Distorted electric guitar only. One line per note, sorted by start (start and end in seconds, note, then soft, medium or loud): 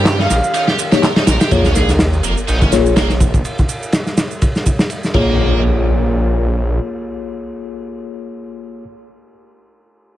0.00 0.18 G4 medium
0.19 0.30 D#4 medium
0.54 0.60 D#4 medium
0.68 0.78 G4 medium
0.92 1.02 G4 medium
1.03 1.08 A#4 medium
1.16 1.23 D#4 loud
1.27 1.36 A#4 medium
1.41 1.51 G4 medium
1.52 1.64 A#3 medium
1.65 1.75 C#4 medium
1.75 1.88 G#4 medium
2.24 2.33 A#3 medium
2.48 2.61 D#4 medium
2.62 2.72 C#4 medium
2.97 3.09 A#3 medium
5.14 5.59 A#3 medium